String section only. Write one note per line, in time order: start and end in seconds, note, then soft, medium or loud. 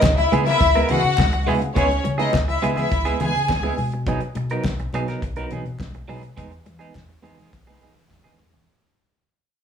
0.16 0.28 E4 medium
0.16 0.28 E5 medium
0.45 0.87 E4 medium
0.45 0.86 E5 loud
0.89 1.44 F#4 medium
0.89 1.44 F#5 loud
1.76 1.99 C#4 medium
1.76 1.99 C#5 loud
2.18 2.30 D#4 medium
2.18 2.30 D#5 medium
2.48 2.60 E4 medium
2.48 2.60 E5 medium
2.77 3.18 E4 medium
2.77 3.17 E5 medium
3.20 3.74 G#4 medium
3.20 3.74 G#5 loud